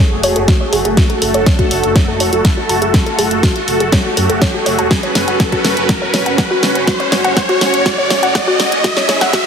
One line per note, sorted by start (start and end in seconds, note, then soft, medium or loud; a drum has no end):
0.00 0.25 F#1 medium
0.00 4.87 A3 medium
0.00 8.80 F#4 medium
0.00 0.93 G#4 medium
0.00 riser medium
0.23 0.33 E1 medium
0.23 0.35 C#5 loud
0.23 open hi-hat loud
0.36 0.45 F#1 medium
0.36 0.43 A4 medium
0.36 closed hi-hat medium
0.48 0.56 F#4 medium
0.48 kick loud
0.48 snare medium
0.48 closed hi-hat medium
0.73 0.82 F#1 medium
0.73 0.84 G#4 loud
0.73 open hi-hat medium
0.85 0.94 F#1 medium
0.85 0.90 G#4 medium
0.85 closed hi-hat medium
0.97 1.05 F#4 medium
0.97 4.87 A4 medium
0.97 kick loud
0.97 snare medium
0.97 closed hi-hat medium
1.10 1.17 A4 medium
1.10 closed hi-hat soft
1.22 1.31 F#1 medium
1.22 1.29 A4 medium
1.22 open hi-hat loud
1.34 1.43 F#1 medium
1.34 1.42 C#5 medium
1.34 closed hi-hat medium
1.46 1.54 C#5 medium
1.46 kick loud
1.46 snare medium
1.46 closed hi-hat medium
1.59 1.66 F#4 medium
1.59 kick medium
1.59 closed hi-hat soft
1.71 1.80 F#1 medium
1.71 open hi-hat loud
1.84 2.22 F#1 medium
1.84 closed hi-hat soft
1.96 2.03 C#5 medium
1.96 kick loud
1.96 snare medium
1.96 closed hi-hat medium
2.08 2.16 A4 medium
2.20 2.29 E1 loud
2.20 2.32 C#5 medium
2.20 open hi-hat loud
2.33 2.42 F#1 medium
2.33 2.44 F#4 medium
2.33 closed hi-hat medium
2.45 kick loud
2.45 snare medium
2.45 closed hi-hat medium
2.57 2.65 F#4 medium
2.69 2.79 F#1 medium
2.69 2.77 A5 medium
2.69 open hi-hat medium
2.82 2.91 F#1 medium
2.82 2.86 G#4 medium
2.82 closed hi-hat medium
2.94 kick loud
2.94 snare medium
2.94 closed hi-hat medium
3.06 3.14 A4 medium
3.06 closed hi-hat soft
3.19 3.28 F#1 medium
3.19 3.30 G#4 loud
3.19 open hi-hat loud
3.31 3.40 F#1 medium
3.31 closed hi-hat soft
3.43 3.51 F#4 medium
3.43 kick loud
3.43 snare medium
3.43 closed hi-hat medium
3.56 closed hi-hat soft
3.68 3.77 F#1 loud
3.68 open hi-hat medium
3.80 3.89 F#1 medium
3.80 3.85 G#4 medium
3.80 closed hi-hat soft
3.92 3.97 C#5 medium
3.92 kick loud
3.92 snare medium
3.92 closed hi-hat medium
4.17 4.26 F#2 loud
4.17 4.25 A4 medium
4.17 open hi-hat loud
4.29 4.38 F#1 medium
4.29 4.37 A4 medium
4.29 closed hi-hat soft
4.42 4.49 C#5 loud
4.42 kick loud
4.42 snare medium
4.42 closed hi-hat medium
4.54 4.61 F#4 medium
4.66 4.75 F#1 medium
4.66 4.74 C#5 medium
4.66 open hi-hat medium
4.79 4.87 E1 medium
4.79 4.90 A5 medium
4.79 closed hi-hat soft
4.91 8.80 C#4 medium
4.91 4.98 F#4 medium
4.91 6.86 B4 medium
4.91 kick loud
4.91 snare medium
4.91 closed hi-hat medium
5.03 5.11 C#5 medium
5.03 closed hi-hat soft
5.15 5.24 F#1 loud
5.15 5.23 C#5 medium
5.15 snare medium
5.15 open hi-hat loud
5.28 5.37 F#1 medium
5.28 5.35 F#5 medium
5.28 closed hi-hat soft
5.40 5.47 F#5 medium
5.40 kick loud
5.40 snare medium
5.40 closed hi-hat medium
5.52 5.57 F#4 medium
5.52 kick medium
5.52 closed hi-hat soft
5.65 5.74 F#1 loud
5.65 snare medium
5.65 open hi-hat medium
5.77 6.15 F#1 medium
5.77 closed hi-hat soft
5.89 5.97 F#4 medium
5.89 kick loud
5.89 snare medium
5.89 closed hi-hat medium
6.02 6.09 C#5 medium
6.14 6.23 E1 loud
6.14 6.21 C#5 medium
6.14 snare medium
6.14 open hi-hat loud
6.26 6.35 F#1 medium
6.26 6.34 F#5 medium
6.26 closed hi-hat medium
6.38 6.46 F#5 medium
6.38 kick loud
6.38 snare medium
6.38 closed hi-hat medium
6.51 6.55 F#4 medium
6.63 6.72 F#1 medium
6.63 snare medium
6.63 open hi-hat medium
6.75 6.84 F#1 medium
6.75 closed hi-hat medium
6.87 6.95 F#4 medium
6.87 8.82 C#5 medium
6.87 kick loud
6.87 snare medium
6.87 closed hi-hat medium
7.00 7.07 C#5 medium
7.00 closed hi-hat soft
7.12 7.21 F#1 loud
7.12 7.20 C#5 medium
7.12 snare medium
7.12 open hi-hat loud
7.24 7.33 F#1 medium
7.24 7.32 F#5 medium
7.24 closed hi-hat medium
7.37 7.44 F#5 medium
7.37 kick loud
7.37 snare medium
7.37 closed hi-hat medium
7.49 7.54 F#4 medium
7.49 closed hi-hat soft
7.61 7.70 F#1 loud
7.61 snare medium
7.61 open hi-hat medium
7.74 8.12 F#1 medium
7.74 closed hi-hat medium
7.86 7.93 F#4 medium
7.86 kick loud
7.86 snare medium
7.86 closed hi-hat medium
7.98 8.06 C#5 medium
8.10 8.20 E1 loud
8.10 8.18 C#5 medium
8.10 snare medium
8.10 open hi-hat loud
8.23 8.32 F#1 medium
8.23 8.30 F#5 medium
8.23 closed hi-hat medium
8.35 8.43 F#5 medium
8.35 kick loud
8.35 snare medium
8.35 closed hi-hat medium
8.47 8.52 F#4 medium
8.60 8.69 F#1 medium
8.60 snare medium
8.60 open hi-hat medium
8.72 8.81 F#1 medium
8.72 closed hi-hat medium
8.84 9.46 C#4 medium
8.84 9.46 E4 medium
8.84 8.92 F#4 medium
8.84 9.46 G#4 medium
8.84 kick loud
8.84 snare medium
8.84 closed hi-hat medium
8.97 9.04 C#5 medium
8.97 snare medium
8.97 closed hi-hat soft
9.09 9.18 F#1 loud
9.09 9.16 C#5 medium
9.09 snare medium
9.09 open hi-hat loud
9.21 9.30 F#1 medium
9.21 9.29 F#5 medium
9.21 snare medium
9.21 closed hi-hat medium
9.33 9.41 F#4 medium
9.33 kick loud
9.33 snare loud
9.33 closed hi-hat medium